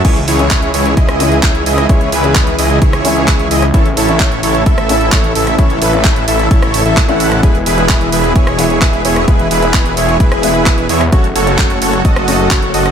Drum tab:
CC |x---------------|----------------|----------------|----------------|
HH |xxoxxxoxxxoxxxox|xxoxxxoxxxoxxxox|xxoxxxoxxxoxxxox|xxoxxxoxxxoxxxox|
CP |----x-------x---|----x-------x---|----x-------x---|----x-------x---|
SD |---------r-----r|---------r-----r|---------r-----r|---------r-----r|
BD |o---o---o---o---|o---o---o---o---|o---o---o---o---|o---o---o---o---|

CC |----------------|----------------|----------------|
HH |xxoxxxoxxxoxxxox|xxoxxxoxxxoxxxo-|xxoxxxoxxxoxxxox|
CP |----x-------x---|----x-------x---|----x-------x---|
SD |---------r-----r|---------r-----r|---------r-----r|
BD |o---o---o---o---|o---o---o---o---|o---o---o---o---|